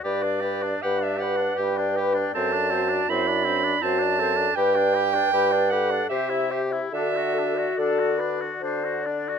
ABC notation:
X:1
M:3/4
L:1/16
Q:1/4=78
K:G
V:1 name="Clarinet"
d4 f e f2 g4 | a4 b4 a4 | g6 f2 e3 z | e4 d6 z2 |]
V:2 name="Flute"
B d B d B d B d B d B d | c d c d c d c d c d c d | B d B d B d B d c e c e | A d A d A2 B2 c2 d2 |]
V:3 name="French horn"
z4 B8 | A2 F2 E2 D2 F2 A2 | B4 B2 A2 G4 | F8- F2 z2 |]
V:4 name="Oboe"
G D G D G D G D G D G D | C D C D C D C D C D C D | G D G D G D G D G E G E | D F D F D F D F D F D F |]
V:5 name="Bassoon" clef=bass
G,,4 G,,4 G,,4 | F,,4 F,,4 F,,4 | G,,4 G,,4 C,4 | D,4 D,4 D,4 |]